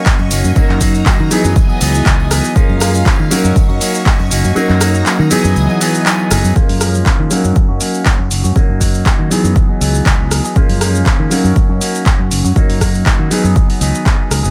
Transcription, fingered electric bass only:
0.19 0.28 F#2 medium
0.31 0.41 F#1 loud
0.44 0.53 F#2 loud
0.70 1.01 F#2 medium
1.20 1.28 D#3 loud
1.31 muted fingered electric bass stroke soft
1.44 1.53 F#2 loud
1.81 2.00 C#2 medium
2.06 2.39 C#2 loud
2.56 muted fingered electric bass stroke soft
2.69 3.01 F#2 loud
3.19 3.28 D#3 loud
3.31 muted fingered electric bass stroke soft
3.44 3.53 F#2 medium
3.69 3.78 F#2 loud
4.19 4.28 F#2 loud
4.30 4.41 F#1 loud
4.44 4.53 F#2 loud
4.56 muted fingered electric bass stroke soft
4.69 5.01 F#2 loud
5.19 5.28 D#3 loud
5.31 muted fingered electric bass stroke soft
5.44 5.53 F#2 medium
5.56 5.66 C#2 medium
6.31 6.41 F#1 medium
6.44 6.53 F#2 medium
6.69 7.01 F#2 medium
7.19 7.28 D#3 medium
7.31 muted fingered electric bass stroke soft
7.44 7.53 F#2 medium
7.69 7.78 F#2 loud
8.19 8.28 F#2 medium
8.31 8.41 F#1 medium
8.44 8.53 F#2 loud
8.69 9.01 F#2 medium
9.19 9.28 D#3 medium
9.31 muted fingered electric bass stroke soft
9.44 9.53 F#2 medium
9.81 10.00 C#2 medium
10.06 10.39 C#2 medium
10.56 muted fingered electric bass stroke soft
10.69 11.01 F#2 medium
11.19 11.28 D#3 loud
11.31 muted fingered electric bass stroke soft
11.44 11.53 F#2 medium
11.69 11.78 F#2 loud
12.19 12.28 F#2 medium
12.31 12.41 F#1 loud
12.44 12.53 F#2 medium
12.69 13.01 F#2 loud
13.19 13.28 D#3 medium
13.31 muted fingered electric bass stroke soft
13.44 13.53 F#2 medium
13.81 13.91 C#2 medium
14.30 14.41 C#2 medium
14.44 14.51 F#1 medium

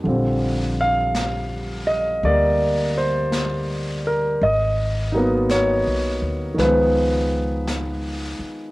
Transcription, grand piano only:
0.04 4.40 D3 soft
0.04 4.42 F3 soft
0.04 2.23 G3 soft
0.09 4.43 C4 soft
0.81 1.91 F5 medium
1.87 2.21 D#5 medium
2.24 4.42 G3 soft
2.24 4.43 A#3 soft
2.24 2.99 D5 medium
2.97 4.08 C5 medium
4.07 4.40 A#4 medium
4.43 5.54 D#5 medium
5.12 6.59 F#3 soft
5.12 6.60 A#3 soft
5.12 6.58 D#4 medium
5.18 6.61 B3 medium
5.51 6.63 C#5 medium
6.54 8.71 D#3 soft
6.54 8.71 F3 soft
6.59 8.71 G#3 soft
6.59 8.36 B4 medium
6.65 8.71 B3 soft

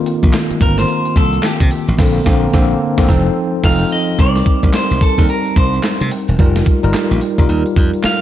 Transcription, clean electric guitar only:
0.62 0.77 A#4 loud
0.79 1.17 C5 loud
1.17 1.45 A4 medium
1.44 1.85 G4 medium
3.65 3.92 F5 loud
3.92 4.17 D#5 loud
4.20 4.75 D5 loud
4.75 5.03 C5 medium
5.02 5.29 A4 medium
5.30 5.58 A#4 medium
5.57 6.08 C5 medium
8.05 8.21 F5 medium

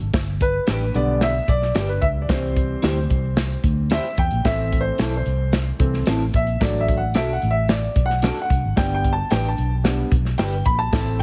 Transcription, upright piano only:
0.42 0.97 B4 loud
0.94 1.30 D3 medium
0.94 1.30 G3 medium
0.94 1.31 B3 medium
0.94 1.23 D5 loud
1.23 1.50 E5 loud
1.49 1.90 D5 loud
1.89 2.01 B4 medium
2.01 2.06 E5 loud
2.22 2.29 D5 medium
2.28 4.41 E3 medium
2.28 4.41 G3 soft
2.28 4.42 C4 medium
2.28 3.60 C5 medium
3.92 4.20 E5 medium
4.19 4.44 G5 loud
4.44 5.77 E3 medium
4.44 5.78 A3 medium
4.44 5.78 C4 medium
4.44 4.79 E5 loud
4.81 5.15 C5 medium
5.17 5.67 C5 medium
5.79 6.04 E3 soft
5.79 6.04 A3 soft
5.79 6.04 C4 medium
6.36 6.63 E5 medium
6.60 6.97 F#3 medium
6.60 6.97 A3 soft
6.60 6.98 D4 medium
6.60 6.80 D5 medium
6.80 6.98 E5 medium
6.97 7.14 F#5 medium
7.15 7.34 E5 medium
7.33 7.52 F#5 medium
7.51 7.69 E5 medium
7.69 8.03 D5 medium
8.06 8.40 F#5 medium
8.42 8.75 F#5 medium
8.76 9.12 G3 medium
8.76 9.13 B3 medium
8.76 9.13 D4 medium
8.76 8.93 G5 loud
8.94 9.13 G5 loud
9.13 9.31 A5 loud
9.31 9.49 G5 loud
9.49 9.74 A5 medium
9.84 10.09 G3 medium
9.84 10.09 B3 soft
9.84 10.09 D4 medium
10.38 10.64 G5 medium
10.66 10.80 B5 loud
10.79 11.17 A5 loud
10.92 11.23 A3 medium
10.92 11.23 C4 medium
10.92 11.23 E4 medium
11.19 11.23 G5 loud

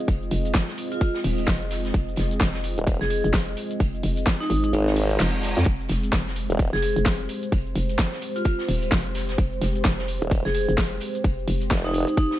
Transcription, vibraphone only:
0.92 0.98 F4 medium
1.01 1.10 F4 medium
3.01 3.07 G#4 medium
3.10 3.19 G#4 medium
4.41 4.47 D#4 medium
4.50 4.59 D#4 medium
4.64 4.70 D#4 medium
4.73 4.82 D#4 medium
6.73 6.79 G#4 medium
6.82 6.91 G#4 medium
8.36 8.42 F4 medium
8.45 8.54 F4 medium
10.45 10.51 G#4 medium
10.55 10.63 G#4 medium
11.85 11.91 D#4 medium
11.94 12.03 D#4 medium
12.08 12.14 D#4 medium
12.17 12.26 D#4 medium

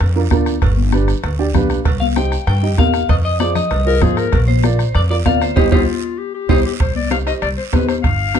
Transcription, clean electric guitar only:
2.00 2.05 F5 medium
2.17 2.46 G5 loud
2.47 2.76 G5 loud
2.79 3.09 F5 medium
3.10 3.15 D#5 medium
3.25 3.39 D#5 medium
3.40 3.54 D5 medium
3.55 4.13 D#5 medium
4.48 4.96 C5 medium
4.95 5.00 D5 loud
5.11 5.16 D5 medium
5.26 5.42 F5 loud
5.42 5.55 C5 medium
5.56 5.66 G4 loud
5.56 5.66 C5 medium
5.56 5.66 D#5 medium
5.72 5.82 G4 loud
5.72 5.82 C5 medium
5.72 5.82 D#5 medium
6.49 6.59 G4 medium
6.49 6.59 C5 medium
6.49 6.59 D#5 medium

